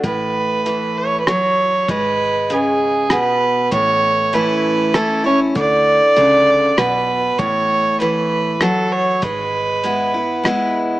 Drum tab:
HH |x-x-x-|x-x-x-|x-x-x-|x-x-x-|
SD |----r-|----r-|----r-|----r-|
BD |o-----|o-----|o-----|o-----|

HH |x-x-x-|x-x-x-|
SD |----r-|----r-|
BD |o-----|o-----|